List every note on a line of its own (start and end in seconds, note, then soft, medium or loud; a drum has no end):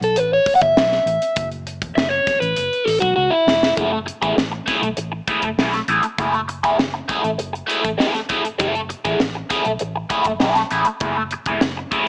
0.01 0.16 B1 loud
0.01 0.18 A4 medium
0.01 closed hi-hat soft
0.16 0.38 A1 loud
0.16 0.32 B4 medium
0.16 closed hi-hat loud
0.33 0.55 C#5 medium
0.46 kick loud
0.46 open hi-hat medium
0.55 0.62 F#5 medium
0.61 0.73 F#1 loud
0.61 1.48 E5 medium
0.61 kick medium
0.61 closed hi-hat medium
0.77 0.98 B1 medium
0.77 snare loud
0.92 snare soft
1.06 1.17 A1 medium
1.06 closed hi-hat medium
1.22 closed hi-hat medium
1.36 1.82 F#1 loud
1.36 kick loud
1.36 closed hi-hat loud
1.52 closed hi-hat soft
1.67 closed hi-hat medium
1.82 1.93 E1 medium
1.82 kick medium
1.82 closed hi-hat medium
1.95 2.18 F#1 loud
1.95 2.10 E5 loud
1.95 snare loud
2.10 2.40 C#5 loud
2.27 kick loud
2.27 snare soft
2.27 closed hi-hat medium
2.40 2.53 A1 loud
2.40 2.88 B4 loud
2.40 closed hi-hat soft
2.56 2.68 F#1 medium
2.56 closed hi-hat loud
2.73 closed hi-hat soft
2.84 2.98 A1 medium
2.84 3.00 A4 loud
2.84 open hi-hat medium
3.00 3.13 B1 medium
3.00 3.14 F#4 medium
3.00 kick medium
3.00 closed hi-hat medium
3.16 3.28 C#2 medium
3.16 3.32 F#4 medium
3.30 3.73 E4 medium
3.47 3.62 E1 medium
3.47 snare medium
3.62 3.73 F1 medium
3.62 snare medium
3.77 4.10 F#1 loud
3.77 3.98 A3 medium
3.77 3.92 E4 medium
3.77 3.91 G#4 medium
3.77 kick loud
3.77 closed hi-hat medium
3.92 muted overdriven electric guitar stroke soft
4.06 muted overdriven electric guitar stroke soft
4.06 closed hi-hat medium
4.22 4.33 A1 medium
4.22 4.36 A3 soft
4.22 4.36 E4 medium
4.22 4.37 G#4 medium
4.22 kick medium
4.22 closed hi-hat soft
4.37 4.59 A1 medium
4.37 muted overdriven electric guitar stroke soft
4.37 snare medium
4.52 muted overdriven electric guitar stroke soft
4.66 4.88 A3 medium
4.66 4.82 E4 medium
4.66 4.81 G#4 medium
4.66 kick medium
4.66 snare soft
4.66 closed hi-hat medium
4.82 4.93 B1 medium
4.82 muted overdriven electric guitar stroke soft
4.82 closed hi-hat soft
4.97 5.19 A1 medium
4.97 muted overdriven electric guitar stroke soft
4.97 closed hi-hat medium
5.12 muted overdriven electric guitar stroke soft
5.28 5.49 A3 medium
5.28 5.44 E4 medium
5.28 5.43 G#4 medium
5.28 kick loud
5.28 closed hi-hat medium
5.42 5.54 F#1 medium
5.42 muted overdriven electric guitar stroke soft
5.42 kick medium
5.42 closed hi-hat soft
5.58 5.80 B1 medium
5.58 5.79 A3 medium
5.58 5.74 E4 medium
5.58 5.73 G#4 medium
5.58 snare medium
5.73 muted overdriven electric guitar stroke soft
5.73 snare soft
5.73 closed hi-hat soft
5.88 5.99 A1 medium
5.88 6.05 A3 medium
5.88 6.04 E4 medium
5.88 6.03 G#4 medium
5.88 closed hi-hat medium
6.03 muted overdriven electric guitar stroke soft
6.03 closed hi-hat soft
6.18 6.64 F#1 loud
6.18 6.39 A3 medium
6.18 6.34 E4 medium
6.18 6.33 G#4 medium
6.18 kick loud
6.18 closed hi-hat medium
6.34 muted overdriven electric guitar stroke soft
6.34 closed hi-hat soft
6.48 muted overdriven electric guitar stroke soft
6.48 closed hi-hat medium
6.63 6.75 E1 medium
6.63 6.77 A3 soft
6.63 6.78 E4 medium
6.63 6.78 G#4 medium
6.63 kick medium
6.63 closed hi-hat soft
6.78 7.01 F#1 medium
6.78 muted overdriven electric guitar stroke soft
6.78 snare loud
6.94 muted overdriven electric guitar stroke soft
7.08 7.29 A3 medium
7.08 7.23 E4 medium
7.08 7.22 G#4 medium
7.08 kick medium
7.08 closed hi-hat medium
7.23 7.35 A1 medium
7.23 muted overdriven electric guitar stroke soft
7.23 closed hi-hat soft
7.38 7.61 F#1 medium
7.38 muted overdriven electric guitar stroke soft
7.38 closed hi-hat medium
7.53 muted overdriven electric guitar stroke soft
7.53 closed hi-hat soft
7.67 7.89 A3 loud
7.67 7.83 E4 medium
7.67 7.82 G#4 medium
7.67 closed hi-hat medium
7.83 7.95 A1 medium
7.83 muted overdriven electric guitar stroke soft
7.83 kick medium
7.83 closed hi-hat soft
7.98 8.19 A3 medium
7.98 8.14 E4 medium
7.98 8.13 G#4 medium
7.98 snare medium
8.14 muted overdriven electric guitar stroke soft
8.14 snare soft
8.14 closed hi-hat soft
8.29 8.46 A3 medium
8.29 8.45 E4 medium
8.29 8.43 G#4 medium
8.29 kick medium
8.29 closed hi-hat medium
8.44 muted overdriven electric guitar stroke soft
8.44 closed hi-hat soft
8.58 8.92 F#1 medium
8.58 8.80 A3 medium
8.58 8.75 E4 medium
8.58 8.74 G#4 medium
8.58 kick loud
8.58 closed hi-hat medium
8.75 muted overdriven electric guitar stroke soft
8.75 closed hi-hat soft
8.89 muted overdriven electric guitar stroke soft
8.89 closed hi-hat medium
9.05 9.16 A1 medium
9.05 9.19 A3 soft
9.05 9.20 E4 medium
9.05 9.20 G#4 medium
9.05 kick medium
9.05 closed hi-hat soft
9.20 9.42 A1 medium
9.20 muted overdriven electric guitar stroke soft
9.20 snare loud
9.35 muted overdriven electric guitar stroke soft
9.50 9.71 A3 medium
9.50 9.66 E4 medium
9.50 9.65 G#4 medium
9.50 kick medium
9.50 snare soft
9.50 closed hi-hat medium
9.65 9.77 B1 medium
9.65 muted overdriven electric guitar stroke soft
9.65 closed hi-hat soft
9.79 10.03 A1 medium
9.79 muted overdriven electric guitar stroke soft
9.79 closed hi-hat medium
9.96 muted overdriven electric guitar stroke soft
10.10 10.31 A3 medium
10.10 10.26 E4 medium
10.10 10.24 G#4 medium
10.10 kick medium
10.10 closed hi-hat medium
10.24 10.37 F#1 medium
10.24 muted overdriven electric guitar stroke soft
10.24 kick medium
10.24 closed hi-hat medium
10.40 10.63 B1 medium
10.40 10.61 A3 medium
10.40 10.56 E4 medium
10.40 10.55 G#4 medium
10.40 snare medium
10.55 muted overdriven electric guitar stroke soft
10.55 snare soft
10.55 closed hi-hat soft
10.71 10.82 A1 medium
10.71 10.87 A3 medium
10.71 10.86 E4 medium
10.71 10.85 G#4 medium
10.71 closed hi-hat medium
10.85 muted overdriven electric guitar stroke soft
10.85 closed hi-hat medium
11.00 11.34 F#1 medium
11.00 11.22 A3 medium
11.00 11.17 E4 medium
11.00 11.16 G#4 medium
11.00 kick loud
11.00 closed hi-hat medium
11.17 muted overdriven electric guitar stroke soft
11.31 muted overdriven electric guitar stroke soft
11.31 closed hi-hat medium
11.46 11.57 E1 medium
11.46 11.61 A3 medium
11.46 11.62 E4 medium
11.46 11.62 G#4 medium
11.46 kick medium
11.46 closed hi-hat soft
11.61 11.83 F#1 medium
11.61 muted overdriven electric guitar stroke soft
11.61 snare loud
11.77 muted overdriven electric guitar stroke soft
11.91 12.08 A3 medium
11.91 12.07 E4 medium
11.91 12.06 G#4 medium
11.91 kick medium
11.91 closed hi-hat medium